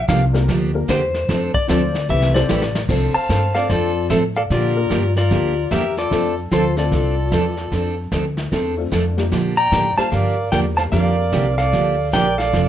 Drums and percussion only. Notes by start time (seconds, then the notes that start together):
0.08 kick, snare, hi-hat pedal
0.34 snare
0.48 brush sweep, kick, snare
0.89 kick, snare, hi-hat pedal
1.14 snare
1.29 brush sweep, kick, snare
1.54 kick
1.69 kick, snare, hi-hat pedal
1.95 snare
2.22 snare
2.35 snare
2.49 snare, hi-hat pedal
2.62 snare
2.75 snare
2.89 brush sweep, kick, snare, crash
3.29 kick, snare, hi-hat pedal
3.55 snare
3.70 brush sweep, kick, snare
4.10 kick, snare, hi-hat pedal
4.50 brush sweep, kick, snare
4.90 kick, snare, hi-hat pedal
5.16 snare
5.31 brush sweep, kick, snare
5.71 kick, snare, hi-hat pedal
5.97 snare
6.11 brush sweep, kick, snare
6.51 kick, snare, hi-hat pedal
6.77 snare
6.92 brush sweep, kick, snare
7.32 kick, snare, hi-hat pedal
7.57 snare
7.72 brush sweep, kick, snare
8.12 kick, snare, hi-hat pedal
8.37 snare
8.52 brush sweep, kick, snare
8.92 kick, snare, hi-hat pedal
9.18 snare
9.32 brush sweep, kick, snare
9.72 kick, snare, hi-hat pedal
9.98 snare
10.12 brush sweep, kick, snare
10.52 kick, snare, hi-hat pedal
10.78 snare
10.92 brush sweep, kick, snare
11.32 kick, snare, hi-hat pedal
11.58 snare
11.73 brush sweep, kick, snare
12.13 kick, snare, hi-hat pedal
12.39 snare
12.53 brush sweep, kick, snare